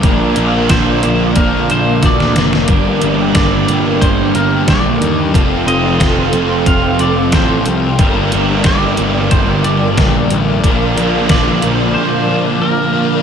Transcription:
<<
  \new Staff \with { instrumentName = "Analog synth pad" } { \time 4/4 \key g \minor \tempo 4 = 91 << { <bes' d'' d'''>1~ | <bes' d'' d'''>1 | <a' f'' c'''>1 | <bes' d'' d'''>1~ |
<bes' d'' d'''>1 | } \\ { f''1 | g''1~ | g''1~ | g''1 |
f''1 | } >> }
  \new Staff \with { instrumentName = "Clean electric guitar" } { \time 4/4 \key g \minor r4 c''4 bes'8 c''8 d''8. r16 | r4 d''4 c''8 bes'8 d''8. r16 | r8 ees''4 r8 f''8 d''8 c''8. r16 | r4 d''4 c''8 d''4 r8 |
r4 d''4 c''4 bes'8. r16 | }
  \new Staff \with { instrumentName = "Overdriven electric guitar" } { \time 4/4 \key g \minor <bes, d f bes d' bes'>1 | <g, d g bes d' bes'>1 | <f c' f' a'>1 | <g, d g bes d' bes'>1 |
<bes, d f bes d' bes'>1 | }
  \new Staff \with { instrumentName = "Distorted electric guitar" } { \clef bass \time 4/4 \key g \minor <bes, f bes>8 <f bes>8 <bes, f bes>8 <f bes>8 <bes, f bes>8 <f bes>8 <bes, f bes>8 <f bes>8 | <g, d g>8 <d g>8 <g, d g>8 <d g>8 <g, d g>8 <d g>8 <g, d g>8 <d g>8 | <f, c f>8 <c f>8 <f, c f>8 <c f>8 <f, c f>8 <c f>8 <f, c f>8 <c f>8 | <g, d g>8 <d g>8 <g, d g>8 <d g>8 <g, d g>8 <d g>8 <g, d g>8 <d g>8 |
<bes, f bes>8 <f bes>8 <bes, f bes>8 <f bes>8 <bes, f bes>8 <f bes>8 <bes, f bes>8 <f bes>8 | }
  \new Staff \with { instrumentName = "Picked electric bass" } { \clef bass \time 4/4 \key g \minor bes,,8 bes,,8 bes,,8 bes,,8 bes,,8 bes,,8 d,8 f,,8 | g,,8 g,,8 g,,8 g,,8 g,,8 g,,8 bes,,8 ees,8 | f,,8 f,,8 f,,8 f,,8 f,,8 f,,8 a,,8 c,8 | g,,8 g,,8 g,,8 g,,8 g,,8 g,,8 bes,,8 a,,8 |
bes,,8 bes,,8 bes,,8 bes,,8 r2 | }
  \new DrumStaff \with { instrumentName = "Drums" } \drummode { \time 4/4 <hh bd>8 hh8 <hh bd sn>8 hh8 <hh bd>8 hh8 <hh bd sn>16 sn16 <hh sn>16 sn16 | <hh bd>8 hh8 <hh bd sn>8 hh8 <hh bd>8 hh8 <hh bd sn>8 hh8 | <hh bd>8 hh8 <hh bd sn>8 hh8 <hh bd>8 hh8 <hh bd sn>8 hh8 | <hh bd>8 hh8 <hh bd sn>8 hh8 <hh bd>8 hh8 <hh bd sn>8 hh8 |
<hh bd>8 hh8 <hh bd sn>8 hh8 r4 r4 | }
>>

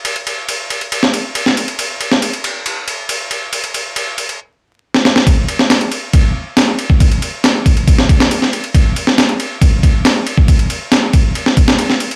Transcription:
\new DrumStaff \with { instrumentName = "Drums" } \drummode { \time 4/4 \tempo 4 = 138 cymr16 cymr16 cymr8 cymr8 cymr16 cymr16 cymr16 sn16 cymr8 cymr16 sn16 cymr16 cymr16 | cymr8 cymr16 sn16 cymr16 cymr16 cymr8 cymr8 cymr8 cymr8 cymr8 | cymr16 cymr16 cymr8 cymr8 cymr16 cymr16 r4 r16 sn16 sn16 sn16 | <bd cymr>8 cymr16 sn16 <cymr sn>16 cymr16 cymr8 <bd cymr>4 <cymr sn>8 cymr16 bd16 |
<bd cymr>16 cymr16 cymr8 <cymr sn>8 <bd cymr>16 cymr16 <bd cymr>16 sn16 <bd cymr>16 sn16 cymr16 sn16 cymr16 cymr16 | <bd cymr>8 cymr16 sn16 <cymr sn>16 cymr16 cymr8 <bd cymr>8 <bd cymr>8 <cymr sn>8 cymr16 bd16 | <bd cymr>16 cymr16 cymr8 <cymr sn>8 <bd cymr>8 cymr16 sn16 <bd cymr>16 sn16 cymr16 sn16 cymr16 cymr16 | }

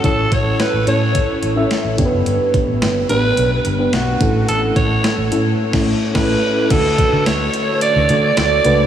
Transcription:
<<
  \new Staff \with { instrumentName = "Alto saxophone" } { \time 4/4 \key a \mixolydian \tempo 4 = 108 a'8 cis''8 b'8 cis''4 r4. | r4. b'4 r8 fis'4 | a'8 cis''4 r4. b'4 | a'4 cis''4 d''4 d''4 | }
  \new Staff \with { instrumentName = "FM electric piano" } { \time 4/4 \key a \mixolydian <cis' e' a' cis''>4 r8 <cis' e' a' cis''>4 r16 <cis' e' a' e''>8. <b d' g' a' b'>8~ | <b d' g' a' b'>4 r8 <b d' g' b'>4 r16 <b d' g' b'>8. <a cis' e' a'>8~ | <a cis' e' a'>4 r8 <a cis' e' a'>8 r16 <a cis' e' a'>8 r16 <a cis' e' a'>8 r8 | <a d' fis' a'>4. r4 <a d' fis' a'>8. r16 <a d' fis' b'>16 r16 | }
  \new Staff \with { instrumentName = "FM electric piano" } { \clef bass \time 4/4 \key a \mixolydian a,4. r2 g,8~ | g,4 r2 r8 a,8~ | a,4 r2. | d4. r2 r8 | }
  \new Staff \with { instrumentName = "Fingered electric bass" } { \clef bass \time 4/4 \key a \mixolydian a,,8 a,,8 r16 a,,16 a,8. r16 a,,8 r16 a,,16 g,,16 fis,,16 | g,,16 r8 a,,16 g,,8 a,,8 b,,8 g,,8 b,,8 a,,8 | a,,8 a,,8 r16 a,,16 a,8 r16 a,,8 r16 a,,8 r8 | d,8 r16 d16 d,8 r8. d,16 d8 d,8 cis,8 | }
  \new DrumStaff \with { instrumentName = "Drums" } \drummode { \time 4/4 <hh bd>8 <hh bd>8 <hh sn>8 hh8 <hh bd>8 hh8 <hh sn>8 <hh bd>8 | hh8 <hh bd>8 <hh sn>8 hh8 hh8 hh8 <hh sn>8 <hh bd>8 | hh8 <hh bd>8 <hh sn>8 hh8 r16 <cymc bd sn>8. <cymc bd sn>4 | <cymc hh bd>8 <hh bd>8 <hh sn tamb>8 hh8 hh8 hh8 <hh sn tamb>8 hh8 | }
>>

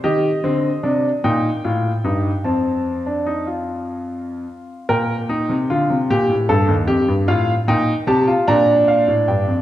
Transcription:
<<
  \new Staff \with { instrumentName = "Grand piano" } { \time 6/8 \key bes \major \tempo 4. = 50 << { ees''4. g''4. | a''2~ a''8 r8 | g''2. | f''8 g''8 a''8 bes''8 f''8 g''8 | } \\ { g'8 c'8 d'8 ees'8 f'8 ees'8 | c'8. d'16 ees'16 f'4.~ f'16 | bes'8 ees'8 f'8 g'8 a'8 g'8 | f'8 ees'8 g'16 f'16 d'4. | } >> }
  \new Staff \with { instrumentName = "Grand piano" } { \clef bass \time 6/8 \key bes \major ees8 d8 c8 bes,8 a,8 g,8 | f,2~ f,8 r8 | bes,8. c16 d16 c16 bes,16 a,16 g,16 ees,16 f,16 g,16 | a,8 bes,8 c8 bes,8. a,16 g,16 f,16 | }
>>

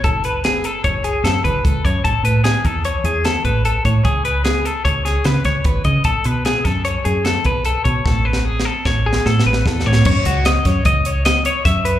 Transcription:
<<
  \new Staff \with { instrumentName = "Clean electric guitar" } { \time 5/4 \key fis \dorian \tempo 4 = 150 a'8 b'8 gis'8 a'8 cis''8 gis'8 a'8 b'8 a'8 cis''8 | a'8 b'8 gis'8 a'8 cis''8 gis'8 a'8 b'8 a'8 cis''8 | gis'8 b'8 gis'8 a'8 cis''8 gis'8 b'8 cis''8 b'8 dis''8 | a'8 b'8 gis'8 a'8 cis''8 gis'8 a'8 b'8 a'8 cis''8 |
a'8 b'8 gis'8 a'8 cis''8 gis'8 a'8 b'8 a'8 cis''8 | cis''8 fis'8 dis''8 cis''8 dis''8 cis''8 dis''8 cis''8 e''8 b'8 | }
  \new Staff \with { instrumentName = "Fingered electric bass" } { \clef bass \time 5/4 \key fis \dorian fis,,2 fis,,4 fis,8 fis,,8 cis,8 fis,8 | a,,16 r16 a,4 e,4 e,4 a,,4 a,8 | cis,2 cis,4 cis8 cis,8 gis,,8 cis8 | b,,16 r16 b,4 fis,4 fis,4 b,,4 b,8 |
a,,2 a,,4 a,8 a,,8 e,8 a,8 | fis,8 cis,4 fis,8 cis,2 fis,4 | }
  \new DrumStaff \with { instrumentName = "Drums" } \drummode { \time 5/4 <hh bd>8 hh8 <hh sn>8 hh8 <hh bd>8 hh8 <hh sn>8 <hh bd>8 <hh bd>8 <hh bd>8 | <hh bd>8 hh8 <hh sn>8 <hh bd>8 hh8 hh8 <hh sn>8 <hh bd>8 hh8 <hh bd>8 | <hh bd>8 hh8 <hh sn>8 hh8 <hh bd>8 <hh sn>8 <hh sn>8 <hh bd sn>8 <hh bd>8 <hh bd>8 | <hh bd>8 hh8 <hh sn>8 <hh bd sn>8 hh8 hh8 <hh sn>8 <hh bd>8 hh8 <hh bd>8 |
\tuplet 3/2 { <bd sn>8 r8 sn8 r8 sn8 r8 <bd sn>8 r8 sn8 sn8 sn8 sn8 <bd sn>8 sn8 sn8 } | <cymc bd>8 hh8 <hh sn>8 <hh bd sn>8 <hh bd>8 hh8 <hh sn>8 hh8 <hh bd sn>8 hh8 | }
>>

